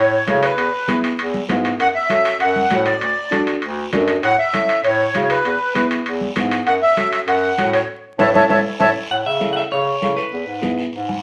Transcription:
Already playing: A2 C#5
0.26 C#3 C#4 E4 A4, high conga, high timbale, low timbale, short guiro
0.43 B4, high timbale, short guiro
0.58 E2, high timbale, long guiro
0.88 B3 E4 G#4, high conga, high timbale, short guiro
1.04 high timbale, short guiro
1.19 E2, high timbale, long guiro
1.34 high conga
1.49 G#2 B3 E4 G#4, high conga, high timbale, low timbale, short guiro
1.64 high timbale, short guiro
1.79 F#2 F#5, high timbale, long guiro
1.95 E5
2.09 C#4 F#4 A4, high conga, high timbale, short guiro
2.25 high timbale, short guiro
2.40 F#2 F#5, high timbale, long guiro
2.56 high conga
2.70 A2 C#4 F#4 A4, high conga, high timbale, low timbale, short guiro
2.86 D5, high timbale, short guiro
3.01 D2, high timbale, long guiro
3.31 D4 F#4 A4, high conga, high timbale, short guiro
3.47 high timbale, short guiro
3.62 D2, high timbale, long guiro
3.93 F#2 D4 F#4 A4, high conga, high timbale, low timbale, short guiro
4.07 high timbale, short guiro
4.23 A2 F#5, high timbale, long guiro
4.39 E5
4.53 C#4 E4 A4, high conga, high timbale, short guiro
4.69 high timbale, short guiro
4.84 A2 C#5, high timbale, long guiro
5.14 C#3 C#4 E4 F#4, high conga, high timbale, short guiro
5.23 C#5
5.30 B4, high timbale, short guiro
5.45 E2, high timbale, long guiro
5.74 B3 E4 G#4, high conga, high timbale, short guiro
5.91 high timbale, short guiro
6.06 E2, high timbale, long guiro
6.21 high conga
6.36 G#2 B3 E4 G#4, high conga, high timbale, short guiro
6.51 high timbale, short guiro
6.67 F#2 F#5, high timbale, long guiro
6.82 E5
6.96 C#4 F#4 A4, high conga, high timbale, short guiro
7.12 E5, high timbale, short guiro
7.28 F#2 F#5, high timbale, long guiro
7.57 A2 C#4 F#4 A4, high conga, high timbale, short guiro
7.73 C#5, high timbale, short guiro
8.19 A2 C#4 E4 A4 C#5 E5 A5, high conga, high timbale, long guiro
8.34 A2 C#4 E4 A4 C#5 E5 A5, high conga, high timbale, long guiro
8.49 A2 C#4 E4 A4 C#5 E5 A5, high conga, high timbale, long guiro
8.80 A2 C#4 E4 A4 C#5 E5 A5, high conga, high timbale, long guiro
9.11 A2 F#5, long guiro
9.26 C#3 E5
9.40 C#4 E4 A4, high conga, short guiro
9.53 E5 F#5, short guiro
9.71 C#3 C#5, long guiro
10.01 C#3 C#4 E4 A4, high conga, short guiro
10.17 B4, short guiro
10.32 E2, long guiro
10.47 G#2
10.62 B3 E4 G#4, high conga, short guiro
10.78 short guiro
10.93 G#2, long guiro
11.08 G#5, high conga

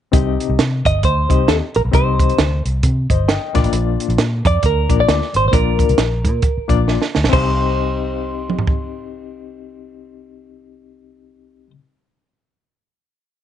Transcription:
0.12 C2 C3 C4 D#4 G4 D#5, kick, closed hi-hat
0.40 closed hi-hat
0.49 C2
0.59 C3, snare, closed hi-hat
0.85 G1 D#5, kick, closed hi-hat
1.03 D2 C5, kick, closed hi-hat
1.29 C2 C4 D#4 G4 D#5, kick, closed hi-hat
1.48 D#2 A4, snare, closed hi-hat
1.74 A#1 A#4, closed hi-hat
1.85 B1
1.91 C2 C3 C4 D#4 G4 C5 D#5, kick, closed hi-hat
2.19 kick, closed hi-hat
2.29 closed hi-hat
2.38 D2, snare, closed hi-hat
2.65 C2, closed hi-hat
2.83 C3, kick, closed hi-hat
3.10 G1 C5 D#5, kick, closed hi-hat
3.28 D#5 G5, snare, closed hi-hat
3.54 A#1 A#2 A#3 D4 F4 D5, kick, snare, closed hi-hat
3.64 A1, closed hi-hat
3.72 A#1, closed hi-hat
4.00 closed hi-hat
4.08 A#1, closed hi-hat
4.18 A#2, snare, closed hi-hat
4.45 F2 D5, kick, closed hi-hat
4.63 D2 A#4, kick, closed hi-hat
4.89 A#1 A#3 D4 F4 D5, kick, closed hi-hat
5.00 D5
5.08 D2, snare, closed hi-hat
5.22 snare
5.34 G#1 A#2 C5, closed hi-hat
5.45 A1 C5
5.52 A#1 A#3 D4 F4 A#4 D5, kick, closed hi-hat
5.79 kick, closed hi-hat
5.89 C2, closed hi-hat
5.98 A#1, snare, closed hi-hat
6.24 A#2, kick, closed hi-hat
6.42 kick, closed hi-hat
6.58 muted fingered electric bass stroke
6.68 A#1 A#3 D4 F4 D5, kick, closed hi-hat
6.88 snare
7.02 snare
7.15 D2, snare
7.24 B1, snare
7.29 C2 C4 D#4, kick, crash
7.33 G4 C5 D#5
8.50 mid tom
8.59 floor tom
8.67 kick

